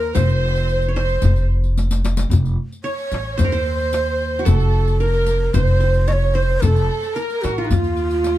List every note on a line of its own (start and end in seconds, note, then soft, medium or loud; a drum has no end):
0.00 0.11 D#2 medium
0.00 0.15 A#4 medium
0.00 0.17 A#4 medium
0.00 1.02 A#4 medium
0.00 0.14 C5 medium
0.05 darbuka ka soft
0.14 1.19 F1 loud
0.14 0.95 C5 medium
0.14 0.94 C5 medium
0.14 0.92 C5 medium
0.14 riq medium
0.14 darbuka dum medium
0.29 riq soft
0.29 darbuka ka soft
0.44 darbuka ka soft
0.56 riq soft
0.69 riq soft
0.69 darbuka ka soft
0.82 riq soft
0.82 darbuka ka soft
0.88 1.02 C#5 medium
0.93 1.45 C5 medium
0.93 1.46 C5 medium
0.93 2.02 C5 medium
0.93 darbuka tek medium
1.09 riq soft
1.09 darbuka ka soft
1.22 2.27 F1 medium
1.22 riq medium
1.22 darbuka dum medium
1.36 riq soft
1.64 riq soft
1.64 darbuka ka soft
1.77 riq soft
1.77 darbuka tek soft
1.91 riq medium
1.91 darbuka ka medium
2.04 riq medium
2.04 darbuka tek medium
2.17 riq medium
2.17 darbuka ka medium
2.30 2.55 F1 medium
2.30 riq medium
2.30 darbuka dum medium
2.45 riq soft
2.45 darbuka ka soft
2.72 riq soft
2.84 3.40 C#5 medium
2.84 3.43 C#5 medium
2.84 3.35 C#5 medium
2.84 riq soft
2.84 darbuka ka soft
2.98 riq soft
3.12 3.36 A1 medium
3.12 riq soft
3.12 darbuka tek medium
3.37 4.43 D#2 medium
3.37 4.46 C5 medium
3.37 3.52 C5 medium
3.37 4.48 C5 loud
3.37 riq medium
3.37 darbuka dum medium
3.44 4.51 A#4 medium
3.52 4.58 C5 medium
3.52 riq soft
3.52 darbuka ka soft
3.65 riq soft
3.65 darbuka ka soft
3.80 riq soft
3.93 riq medium
3.93 darbuka tek medium
4.08 darbuka ka soft
4.21 darbuka ka soft
4.35 darbuka ka soft
4.39 5.68 F#4 medium
4.45 5.51 F1 loud
4.45 5.06 A4 medium
4.45 5.02 A4 medium
4.45 5.01 A4 medium
4.45 riq medium
4.45 darbuka dum medium
4.60 riq soft
4.88 riq soft
5.00 5.50 A#4 medium
5.00 6.13 A#4 medium
5.00 5.55 A#4 medium
5.00 riq soft
5.00 darbuka ka soft
5.14 riq soft
5.26 riq soft
5.54 6.58 F1 loud
5.54 6.09 C5 loud
5.54 6.04 C5 medium
5.54 5.80 C5 medium
5.54 riq medium
5.54 darbuka dum medium
5.68 riq soft
5.68 darbuka ka soft
5.80 6.14 C5 medium
5.80 riq soft
5.80 darbuka ka soft
5.94 riq soft
6.08 6.41 C#5 medium
6.08 6.34 C#5 medium
6.08 6.14 D#5 medium
6.08 riq soft
6.08 darbuka tek medium
6.13 6.36 C#5 medium
6.24 darbuka ka soft
6.34 6.62 C5 loud
6.34 6.55 C5 medium
6.34 7.40 C5 medium
6.34 darbuka ka soft
6.50 darbuka ka soft
6.58 6.64 A#4 medium
6.58 6.66 A#4 medium
6.62 6.87 F1 medium
6.62 7.22 A4 medium
6.62 7.17 A4 medium
6.62 riq medium
6.62 darbuka dum medium
6.76 riq soft
7.03 riq soft
7.16 7.43 A#4 medium
7.16 8.29 A#4 medium
7.16 7.64 A#4 medium
7.16 riq soft
7.16 darbuka ka soft
7.30 riq soft
7.42 7.68 A1 medium
7.42 7.59 F#4 medium
7.42 7.64 F#4 medium
7.42 riq soft
7.42 darbuka tek medium
7.58 7.66 F4 medium
7.58 7.71 F4 medium
7.64 7.74 D#4 medium
7.64 7.71 F#4 soft
7.70 8.38 D#2 medium
7.70 8.38 F4 medium
7.70 riq medium
7.70 darbuka dum medium
7.84 riq soft
7.84 darbuka ka soft
7.97 riq soft
7.97 darbuka ka soft
8.11 riq soft
8.24 riq medium
8.24 darbuka tek medium